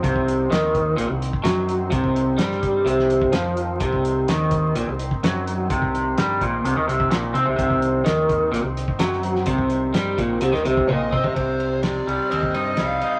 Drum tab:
RD |----------------|----------------|----------------|----------------|
HH |x-x-x-x-x-x-x-x-|x-x-x-x-x-x-x-x-|x-x-x-x-x-x-x-x-|x-x-x-x-x-x-x-x-|
SD |----o-------o---|----oo---o--o---|----o-------o---|----o-------o---|
T1 |----------------|----------------|----------------|----------------|
FT |----------------|----------------|----------------|----------------|
BD |oo----o----o----|oo----o----o----|oo----o----o----|oo----o----o----|

RD |----------------|----------------|x-x-x-x-x-x-x-x-|
HH |x-x-x-x-x-x-x-x-|x-x-x-x-x-x-----|----------------|
SD |----o-------oo-o|----o----o------|----o-------o---|
T1 |----------------|------------o---|----------------|
FT |----------------|---------------o|----------------|
BD |oo----o----o----|oo----o----o--o-|o--------o------|